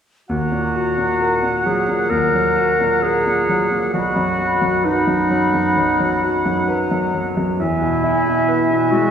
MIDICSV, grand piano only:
0, 0, Header, 1, 2, 480
1, 0, Start_track
1, 0, Key_signature, -6, "minor"
1, 0, Tempo, 910470
1, 156, Time_signature, 4, 2, 24, 8
1, 4801, End_track
2, 0, Start_track
2, 0, Title_t, "Grand piano"
2, 0, Program_c, 0, 0
2, 155, Note_on_c, 0, 39, 41
2, 242, Control_c, 0, 64, 127
2, 274, Note_on_c, 0, 46, 28
2, 395, Note_on_c, 0, 66, 33
2, 470, Note_off_c, 0, 46, 0
2, 515, Note_on_c, 0, 46, 30
2, 590, Note_off_c, 0, 66, 0
2, 636, Note_on_c, 0, 70, 31
2, 708, Note_off_c, 0, 46, 0
2, 754, Note_on_c, 0, 46, 29
2, 828, Note_off_c, 0, 70, 0
2, 876, Note_on_c, 0, 54, 30
2, 946, Note_off_c, 0, 46, 0
2, 993, Note_on_c, 0, 46, 26
2, 1066, Note_off_c, 0, 54, 0
2, 1093, Note_off_c, 0, 39, 0
2, 1111, Note_on_c, 0, 39, 31
2, 1185, Note_off_c, 0, 46, 0
2, 1235, Note_on_c, 0, 54, 30
2, 1352, Note_on_c, 0, 66, 33
2, 1429, Note_off_c, 0, 54, 0
2, 1478, Note_on_c, 0, 46, 26
2, 1548, Note_off_c, 0, 66, 0
2, 1601, Note_on_c, 0, 70, 32
2, 1672, Note_off_c, 0, 46, 0
2, 1722, Note_on_c, 0, 46, 29
2, 1793, Note_off_c, 0, 70, 0
2, 1841, Note_on_c, 0, 54, 28
2, 1913, Note_off_c, 0, 46, 0
2, 1957, Note_on_c, 0, 46, 30
2, 2032, Note_off_c, 0, 54, 0
2, 2057, Note_off_c, 0, 39, 0
2, 2077, Note_on_c, 0, 35, 40
2, 2078, Note_off_c, 0, 46, 0
2, 2090, Control_c, 0, 64, 0
2, 2160, Control_c, 0, 64, 127
2, 2194, Note_on_c, 0, 42, 28
2, 2312, Note_on_c, 0, 66, 34
2, 2389, Note_off_c, 0, 42, 0
2, 2435, Note_on_c, 0, 42, 31
2, 2508, Note_off_c, 0, 66, 0
2, 2552, Note_on_c, 0, 71, 32
2, 2629, Note_off_c, 0, 42, 0
2, 2675, Note_on_c, 0, 42, 29
2, 2749, Note_off_c, 0, 71, 0
2, 2797, Note_on_c, 0, 54, 33
2, 2871, Note_off_c, 0, 42, 0
2, 2919, Note_on_c, 0, 42, 26
2, 2993, Note_off_c, 0, 54, 0
2, 3020, Note_off_c, 0, 35, 0
2, 3043, Note_on_c, 0, 35, 30
2, 3114, Note_off_c, 0, 42, 0
2, 3165, Note_on_c, 0, 54, 33
2, 3281, Note_on_c, 0, 66, 32
2, 3357, Note_off_c, 0, 54, 0
2, 3404, Note_on_c, 0, 42, 28
2, 3476, Note_off_c, 0, 66, 0
2, 3523, Note_on_c, 0, 71, 31
2, 3597, Note_off_c, 0, 42, 0
2, 3645, Note_on_c, 0, 42, 29
2, 3716, Note_off_c, 0, 71, 0
2, 3766, Note_on_c, 0, 54, 31
2, 3836, Note_off_c, 0, 42, 0
2, 3886, Note_on_c, 0, 42, 30
2, 3956, Note_off_c, 0, 54, 0
2, 3983, Note_off_c, 0, 35, 0
2, 4004, Note_off_c, 0, 42, 0
2, 4006, Note_on_c, 0, 40, 42
2, 4013, Control_c, 0, 64, 0
2, 4109, Control_c, 0, 64, 127
2, 4122, Note_on_c, 0, 47, 31
2, 4237, Note_on_c, 0, 64, 36
2, 4312, Note_off_c, 0, 47, 0
2, 4356, Note_on_c, 0, 47, 30
2, 4428, Note_off_c, 0, 64, 0
2, 4472, Note_on_c, 0, 71, 37
2, 4547, Note_off_c, 0, 47, 0
2, 4590, Note_on_c, 0, 47, 30
2, 4665, Note_off_c, 0, 71, 0
2, 4704, Note_on_c, 0, 56, 35
2, 4783, Note_off_c, 0, 47, 0
2, 4801, Note_off_c, 0, 40, 0
2, 4801, Note_off_c, 0, 56, 0
2, 4801, End_track
0, 0, End_of_file